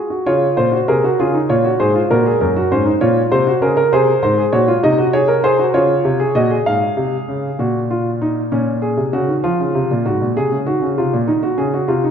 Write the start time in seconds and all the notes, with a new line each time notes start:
0.10 F#4
0.26 C#3 F4 C#5
0.57 A#2 C5
0.72 F#4
0.88 C3 G#4 A#4
1.04 F#4
1.19 C#3 F4 G#4
1.34 D#4
1.49 A#2 F4 C#5
1.65 F#4
1.80 G#2 G#4 C5
1.95 F4
2.10 A#2 F#4 A#4
2.26 G#4
2.41 F#2 A#4
2.56 F#4
2.71 G#2 C#4 C5
2.86 D#4
3.01 A#2 F4 C#5
3.32 C3 C5
3.47 F#4
3.62 C#3 G#4 A#4
3.77 A#4
3.92 C3 G#4 C5
4.22 G#2 C5
4.38 G#4
4.53 A#2 F#4 C#5
4.68 F4
4.83 C3 D#4 D#5
4.98 F#4
5.13 G#4 C#5
5.28 A#4
5.44 G#4 C5
5.59 F#4
5.74 C#3 F4 C#5
6.05 C3
6.20 G#4
6.35 A#2 F#4 D#5
6.50 G#4
6.66 G#2 F5
6.97 C3
7.28 C#3
7.59 A#2 F#4
7.91 F4
8.21 D#4
8.52 A#2 C#4
8.82 G#4
8.97 C3
9.13 C#3 F#4
9.28 D#3
9.44 F3 F4
9.60 C#3
9.75 C3
9.91 A#2
10.05 G#2 F#4
10.21 A#2
10.36 C3 G#4
10.52 C#3
10.67 D#3 F#4
10.82 C#3
10.98 C3 F4
11.13 A#2
11.27 D#3 D#4
11.43 F#4
11.58 C#3 G#4
11.74 F#4
11.88 C3 F4
12.04 D#4